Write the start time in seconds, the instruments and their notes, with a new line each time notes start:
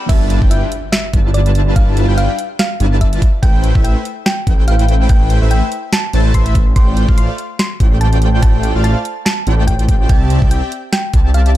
0.09 detuned saw bass G1, supersaw synth G3 D4 E4 F4 B4 A5, synth pluck E5, digital synth lead A5, kick, closed hi-hat, crash, impact
0.30 closed hi-hat
0.42 detuned saw bass G1, supersaw synth G3 D4 E4 F4 B4 G5, digital synth lead G5, kick
0.51 synth pluck E5, closed hi-hat
0.72 closed hi-hat
0.92 synth pluck E5, snare, closed hi-hat
1.13 detuned saw bass G1, supersaw synth G3 D4 E4 F4 B4 A5, digital synth lead A5, kick, closed hi-hat
1.34 synth pluck D5, closed hi-hat
1.46 closed hi-hat
1.55 closed hi-hat
1.76 detuned saw bass G1, supersaw synth G3 D4 E4 F4 B4 A5, synth pluck F5, digital synth lead A5, kick, closed hi-hat
1.97 closed hi-hat
2.08 detuned saw bass G1, supersaw synth G3 D4 E4 F4 B4 G5, digital synth lead G5
2.18 synth pluck F5, closed hi-hat
2.39 closed hi-hat
2.59 synth pluck F5, snare, closed hi-hat
2.80 detuned saw bass G1, supersaw synth G3 D4 E4 F4 B4 A5, digital synth lead A5, closed hi-hat
3.01 synth pluck E5, kick, closed hi-hat
3.13 closed hi-hat
3.22 kick, closed hi-hat
3.43 detuned saw bass A1, supersaw synth A3 E4 B4 C5 G5, synth pluck G5, digital synth lead G5, kick, closed hi-hat
3.64 closed hi-hat
3.75 detuned saw bass A1, supersaw synth A3 E4 B4 C5 E5, digital synth lead E5, kick
3.84 synth pluck G5, closed hi-hat
4.05 closed hi-hat
4.26 synth pluck G5, snare, closed hi-hat
4.47 detuned saw bass A1, supersaw synth A3 E4 B4 C5 G5, digital synth lead G5, kick, closed hi-hat
4.68 synth pluck F5, closed hi-hat
4.79 closed hi-hat
4.89 closed hi-hat
5.09 detuned saw bass A1, supersaw synth A3 E4 B4 C5 G5, digital synth lead G5, synth pluck G5, kick, closed hi-hat
5.30 closed hi-hat
5.42 detuned saw bass A1, supersaw synth A3 E4 B4 C5 E5, digital synth lead E5
5.51 synth pluck G5, closed hi-hat
5.72 closed hi-hat
5.93 synth pluck A5, snare, closed hi-hat
6.13 detuned saw bass A1, supersaw synth A3 E4 B4 C5 A5, digital synth lead A5, closed hi-hat
6.34 detuned saw bass A1, supersaw synth A3 E4 B4 C5 E5, digital synth lead E5, synth pluck C6, kick, closed hi-hat
6.46 closed hi-hat
6.55 kick, closed hi-hat
6.76 detuned saw bass A1, supersaw synth A3 F4 C5 D5 G5, digital synth lead G5, synth pluck C6, kick, closed hi-hat
6.97 closed hi-hat
7.08 detuned saw bass A1, supersaw synth A3 F4 C5 D5 F5, digital synth lead F5, kick
7.18 synth pluck C6, closed hi-hat
7.38 closed hi-hat
7.59 synth pluck C6, snare, closed hi-hat
7.80 detuned saw bass A1, supersaw synth A3 F4 C5 D5 G5, digital synth lead G5, kick, closed hi-hat
8.01 synth pluck A5, closed hi-hat
8.13 closed hi-hat
8.22 closed hi-hat
8.42 detuned saw bass A1, supersaw synth A3 F4 C5 D5 G5, digital synth lead G5, synth pluck A5, kick, closed hi-hat
8.63 closed hi-hat
8.75 detuned saw bass A1, supersaw synth A3 F4 C5 D5 F5, digital synth lead F5
8.84 synth pluck A5, closed hi-hat
9.05 closed hi-hat
9.26 synth pluck A5, snare, closed hi-hat
9.47 detuned saw bass A1, supersaw synth A3 F4 C5 D5 G5, digital synth lead G5, closed hi-hat
9.67 synth pluck G5, kick, closed hi-hat
9.79 closed hi-hat
9.89 kick, closed hi-hat
10.09 detuned saw bass C2, supersaw synth C4 G4 D5 E5 A5, synth pluck G5, digital synth lead A5, kick, closed hi-hat
10.30 closed hi-hat
10.42 detuned saw bass C2, supersaw synth C4 G4 D5 E5 G5, digital synth lead G5, kick
10.51 synth pluck G5, closed hi-hat
10.72 closed hi-hat
10.93 synth pluck G5, snare, closed hi-hat
11.13 detuned saw bass C2, supersaw synth C4 G4 D5 E5 A5, digital synth lead A5, kick, closed hi-hat
11.34 synth pluck F5, closed hi-hat
11.46 closed hi-hat